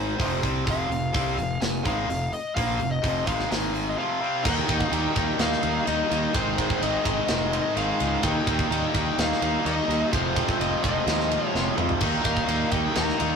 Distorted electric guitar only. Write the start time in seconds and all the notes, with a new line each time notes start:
Already playing: G#2 D#3 G#3
0.17 F2 C3 F3
0.41 C3 G3 C4
0.65 F2 C3 F3
0.89 F2 C3
1.13 C3 G3 C4
1.37 F2 C3
1.62 F2 C3
1.85 G#2 D#3 G#3
2.09 F2 C3
2.56 A#2 F3 A#3
2.79 F2 C3
3.02 F2 C3 F3
3.26 G#2 D#3 G#3
3.50 G#2 D#3 G#3
3.96 F2 C3 F3
4.20 C3 G3 C4
4.45 D#3 A#3 D#4
4.69 D#3 A#3 D#4
4.93 D#3 A#3 D#4
5.15 D#3 A#3 D#4
5.39 D#3 A#3 D#4
5.62 D#3 A#3 D#4
5.86 D#3 A#3 D#4
6.09 D#3 A#3 D#4
6.33 G#2 D#3 G#3
6.57 G#2 D#3 G#3
6.81 G#2 D#3 G#3
7.04 G#2 D#3 G#3
7.27 G#2 D#3 G#3
7.52 G#2 D#3 G#3
7.75 G#2 D#3 G#3
7.99 G#2 D#3 G#3
8.23 D#3 A#3 D#4
8.47 D#3 A#3 D#4
8.70 D#3 A#3 D#4
8.95 D#3 A#3 D#4
9.18 D#3 A#3 D#4
9.41 D#3 A#3 D#4
9.65 D#3 A#3 D#4
9.90 D#3 A#3 D#4
10.12 F2 C3 F3
10.35 F2 C3 F3
10.59 F2 C3 F3
10.82 F2 C3 F3
11.06 F2 C3 F3
11.30 F2 C3 F3
11.53 F2 C3 F3
11.76 F2 C3 F3
12.01 D#3 A#3 D#4
12.24 D#3 A#3 D#4
12.47 D#3 A#3 D#4
12.71 D#3 A#3 D#4
12.94 D#3 A#3 D#4
13.19 D#3 A#3 D#4